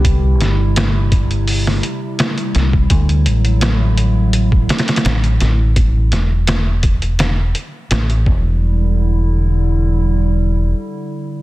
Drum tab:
HH |x---x---x---x-x-o---x---x-x-x---|x-x-x-x-x---x---x---xxxxx-x-x---|x---x---x---x-x-x---x---x-x-----|--------------------------------|
SD |----o---o---------o-----o---o---|--------o-----------ooooo---o---|----o---o-------o-------o-------|--------------------------------|
BD |o-----------o-----------------o-|o-----------------o-------------|o-----------o---------------o---|--------------------------------|